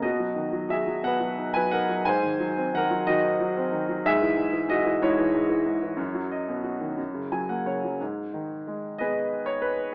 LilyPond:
<<
  \new Staff \with { instrumentName = "Grand piano" } { \time 6/8 \key b \major \tempo 4. = 60 << { dis''4 e''8 fis''8. gis''16 fis''8 | gis''4 fis''8 dis''4 r8 | e''4 dis''8 cis''4.~ | cis''2 gis''16 fis''16 cis''8 |
\key gis \minor r4. dis''8. cis''16 b'8 | } \\ { fis'4 gis'8 b'8. b'16 ais'8 | bis'4 ais'8 fis'4 r8 | gis'4 fis'8 e'4.~ | e'2 r4 |
r4. <gis' b'>4. | } >> }
  \new Staff \with { instrumentName = "Grand piano" } { \clef bass \time 6/8 \key b \major b,16 fis16 dis16 fis16 fis'16 fis16 b,16 fis16 dis'16 fis16 dis'16 fis16 | gis,16 dis16 fis16 bis16 dis16 fis16 dis16 dis'16 fis16 bis16 dis16 fis16 | gis,16 e16 gis,16 e16 gis,16 e16 gis,16 e16 gis,16 e16 gis,16 e16 | fis,16 fis16 dis''16 b,16 fis'16 dis16 fis,16 cis16 fis16 ais16 cis16 fis16 |
\key gis \minor gis,8 dis8 gis8 b4. | }
>>